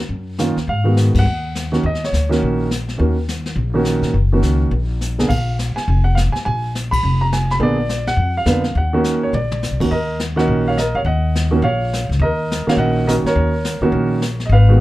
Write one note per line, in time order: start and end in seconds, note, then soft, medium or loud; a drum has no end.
0.09 0.53 F#2 medium
0.09 brush sweep soft
0.39 0.55 D#3 medium
0.39 0.55 A#3 medium
0.39 0.55 C#4 medium
0.39 0.55 F4 medium
0.39 snare medium
0.39 hi-hat pedal medium
0.56 0.67 D#2 medium
0.56 snare soft
0.67 1.11 G#2 medium
0.67 0.95 F5 medium
0.67 brush sweep soft
0.84 1.23 D#3 medium
0.84 1.23 G#3 soft
0.84 1.23 B3 medium
0.84 1.23 F#4 medium
0.97 snare medium
0.97 hi-hat pedal medium
1.15 1.25 G2 medium
1.15 1.81 F#5 medium
1.15 kick medium
1.15 ride medium
1.25 1.80 D#2 medium
1.25 brush sweep soft
1.55 snare medium
1.55 hi-hat pedal medium
1.72 1.82 D#3 medium
1.72 1.82 A#3 medium
1.72 1.82 C#4 medium
1.72 1.83 F#4 medium
1.72 snare soft
1.83 2.10 D#2 medium
1.83 2.03 D#5 medium
1.83 brush sweep soft
1.95 snare soft
2.04 2.40 C#5 medium
2.04 snare soft
2.13 2.39 D2 medium
2.13 snare medium
2.13 hi-hat pedal soft
2.29 2.67 D#3 medium
2.29 2.68 A#3 medium
2.29 2.68 C#4 medium
2.29 2.68 F#4 medium
2.29 snare soft
2.42 2.96 A#1 medium
2.42 brush sweep soft
2.71 snare medium
2.71 hi-hat pedal medium
2.89 snare soft
2.98 3.54 D#2 medium
2.98 3.14 D#3 medium
2.98 3.15 A#3 medium
2.98 3.15 C#4 medium
2.98 3.15 F#4 medium
2.98 brush sweep soft
3.29 snare medium
3.29 hi-hat pedal medium
3.46 snare soft
3.56 3.99 A#1 medium
3.56 brush sweep soft
3.74 4.12 D#3 medium
3.74 4.12 A#3 medium
3.74 4.12 C#4 medium
3.74 4.12 F#4 medium
3.85 snare medium
3.85 hi-hat pedal soft
4.02 4.13 A#2 medium
4.02 snare soft
4.14 4.41 F#1 medium
4.14 brush sweep soft
4.32 4.70 D#3 medium
4.32 4.70 A#3 medium
4.32 4.70 C#4 medium
4.32 4.70 F#4 medium
4.42 4.69 C#2 medium
4.42 snare medium
4.42 hi-hat pedal soft
4.71 5.26 A#1 medium
4.71 brush sweep soft
5.01 snare soft
5.01 hi-hat pedal medium
5.18 5.28 D3 medium
5.18 5.29 A#3 medium
5.18 5.29 B3 medium
5.18 5.29 G#4 medium
5.18 snare medium
5.29 5.73 A#1 medium
5.29 5.56 F5 medium
5.29 brush sweep soft
5.29 kick medium
5.29 crash medium
5.59 snare medium
5.59 hi-hat pedal medium
5.76 6.03 G#5 medium
5.76 muted upright bass stroke soft
5.76 snare soft
5.88 6.31 F1 medium
5.88 brush sweep soft
6.04 6.16 F#5 medium
6.15 6.20 F5 medium
6.15 snare medium
6.15 hi-hat pedal medium
6.32 6.37 G#5 medium
6.32 muted upright bass stroke soft
6.32 snare soft
6.45 7.00 A#1 medium
6.45 6.72 G#5 medium
6.45 brush sweep soft
6.75 snare medium
6.75 hi-hat pedal medium
6.91 7.18 B5 medium
6.91 kick medium
6.91 ride medium
7.03 7.57 F1 medium
7.03 brush sweep soft
7.21 7.26 A#5 medium
7.33 7.50 G#5 medium
7.33 snare medium
7.33 hi-hat pedal soft
7.50 7.56 B5 medium
7.50 snare soft
7.59 8.15 A#1 medium
7.59 7.76 D3 medium
7.59 7.76 A#3 medium
7.59 7.76 B3 medium
7.59 7.76 G#4 medium
7.59 8.05 D5 medium
7.59 brush sweep medium
7.89 snare medium
7.89 hi-hat pedal medium
8.07 8.34 F#5 loud
8.07 snare soft
8.17 8.44 F2 medium
8.17 brush sweep soft
8.37 8.77 F5 medium
8.46 8.73 F2 medium
8.46 8.62 D3 medium
8.46 8.62 A#3 medium
8.46 8.63 B3 medium
8.46 8.63 B4 medium
8.46 snare medium
8.46 hi-hat pedal medium
8.64 snare soft
8.75 9.30 D#2 medium
8.75 9.20 F#5 medium
8.75 brush sweep soft
8.93 9.31 D#3 medium
8.93 9.31 A#3 medium
8.93 9.31 C#4 medium
8.93 9.31 F#4 medium
9.04 snare medium
9.04 hi-hat pedal medium
9.23 9.34 C#5 medium
9.33 9.69 A#1 medium
9.33 9.77 D5 medium
9.33 mid tom soft
9.52 mid tom medium
9.63 snare medium
9.63 hi-hat pedal medium
9.71 9.80 B1 medium
9.80 9.90 D2 medium
9.80 9.90 D#3 medium
9.80 9.90 A#3 medium
9.80 9.90 C#4 medium
9.80 9.90 F#4 medium
9.80 kick medium
9.80 crash medium
9.91 10.45 D#2 medium
9.91 10.18 A#4 medium
9.91 10.17 D#5 medium
9.91 brush sweep soft
10.20 snare medium
10.20 hi-hat pedal medium
10.36 10.74 D#3 medium
10.36 10.74 A#3 medium
10.36 10.75 C#4 medium
10.36 10.75 F#4 medium
10.36 10.65 D#5 medium
10.36 10.67 F#5 medium
10.36 snare soft
10.48 10.91 A#1 medium
10.48 brush sweep soft
10.68 10.78 C#5 medium
10.68 10.77 F5 medium
10.78 10.95 A#4 medium
10.78 10.94 D#5 medium
10.78 snare medium
10.78 hi-hat pedal medium
10.95 11.04 D2 medium
10.95 11.01 C#5 medium
10.95 11.00 F5 medium
11.05 11.60 D#2 medium
11.05 11.60 D#5 medium
11.05 11.59 F#5 medium
11.05 brush sweep soft
11.35 snare medium
11.35 hi-hat pedal medium
11.51 11.61 D#3 medium
11.51 11.62 A#3 medium
11.51 11.62 C#4 medium
11.51 11.62 F#4 medium
11.62 12.06 A#1 medium
11.62 12.07 C#5 medium
11.62 12.07 F5 medium
11.62 brush sweep medium
11.93 snare medium
11.93 hi-hat pedal medium
12.09 12.19 C#2 medium
12.09 snare soft
12.19 12.63 D#2 medium
12.19 12.65 A#4 medium
12.19 12.64 D#5 medium
12.19 brush sweep medium
12.52 snare medium
12.52 hi-hat pedal medium
12.67 13.04 D#3 medium
12.67 13.05 A#3 medium
12.67 13.05 C#4 medium
12.67 13.05 F#4 medium
12.67 12.74 C#5 medium
12.67 12.73 F5 medium
12.67 muted upright bass stroke soft
12.67 snare medium
12.77 13.20 A#1 medium
12.77 13.05 D#5 medium
12.77 13.08 F#5 loud
12.77 brush sweep soft
13.07 13.50 D#3 medium
13.07 13.50 A#3 medium
13.07 13.50 C#4 medium
13.07 13.51 F#4 medium
13.07 13.13 A#4 medium
13.07 13.12 D#5 medium
13.07 snare medium
13.07 hi-hat pedal medium
13.24 14.37 A#4 medium
13.24 14.36 C#5 medium
13.24 muted upright bass stroke soft
13.24 snare soft
13.35 13.79 D#2 medium
13.35 brush sweep soft
13.65 snare medium
13.65 hi-hat pedal medium
13.81 13.91 E2 medium
13.81 14.19 D#3 medium
13.81 14.20 A#3 medium
13.81 14.20 C#4 medium
13.81 14.20 F#4 medium
13.92 14.47 A#1 medium
13.92 brush sweep soft
14.22 snare medium
14.22 hi-hat pedal medium
14.40 snare soft
14.46 14.80 G#1 medium
14.46 14.51 D#5 medium
14.51 14.80 B4 medium
14.51 14.80 F5 medium
14.51 brush sweep soft
14.68 14.80 D#3 medium
14.68 14.80 G#3 medium
14.68 14.80 B3 medium
14.68 14.80 F#4 medium